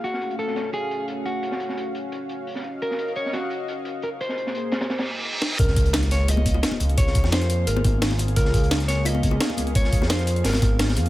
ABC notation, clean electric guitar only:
X:1
M:4/4
L:1/8
Q:1/4=173
K:Db
V:1 name="Clean electric guitar"
G2 =A2 _A2 z G- | G3 z4 z | B2 d G4 B | c6 z2 |
B2 z d e4 | d2 c2 B2 z2 | B2 z d e4 | d2 c2 B2 z2 |]